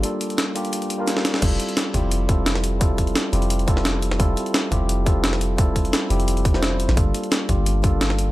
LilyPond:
<<
  \new Staff \with { instrumentName = "Tine electric piano" } { \time 4/4 \key g \dorian \tempo 4 = 173 <g bes d' f' a'>4. <g bes d' f' g'>4 r16 <g bes d' f' bes'>4~ <g bes d' f' bes'>16 | <g c' e' f' a'>4. <g c' e' f' g'>4 <g c' e' f' a'>4. | <g c' e' f' a'>4. <g c' e' f' g'>4 <g c' e' f' a'>4. | <g c' e' f' a'>4. <g c' e' f' g'>4 <g c' e' f' a'>4. |
<g c' e' f' a'>4. <g c' e' f' g'>4 r16 <g c' e' f' c''>4~ <g c' e' f' c''>16 | <g bes d' f' a'>4. <g bes d' f' g'>4 <g bes d' f' a'>4. | }
  \new Staff \with { instrumentName = "808-style bass" } { \clef bass \time 4/4 \key g \dorian r1 | f,,8 r4 f,,2~ f,,8~ | f,,4 r8 f,,2~ f,,8 | f,,8 r4 f,,2~ f,,8~ |
f,,4 r8 f,,2~ f,,16 a,,16 | g,,8 r4 g,,2~ g,,8 | }
  \new DrumStaff \with { instrumentName = "Drums" } \drummode { \time 4/4 hh8 hh16 hh16 <hh sn>8 hh16 hh16 hh16 hh16 hh8 <hh sn>16 sn16 <hh sn>16 sn16 | <cymc hh bd>8 hh16 hh16 <hh sn>8 <hh bd>8 hh8 <hh bd>8 <hh sn>16 sn16 hh8 | <hh bd>8 <hh bd>16 hh16 <hh sn>8 hh16 hh16 hh16 hh16 <hh bd>16 sn16 <hh sn>8 hh16 sn16 | <hh bd>8 hh16 hh16 <hh sn>8 <hh bd>8 hh8 <hh bd>8 <hh sn>16 sn16 hh8 |
<hh bd>8 <hh bd>16 hh16 <hh sn>8 hh16 hh16 hh16 hh16 <hh bd>16 sn16 <hh sn>8 hh16 sn16 | <hh bd>8 hh16 hh16 <hh sn>8 <hh bd>8 hh8 <hh bd>8 <hh sn>16 sn16 hh8 | }
>>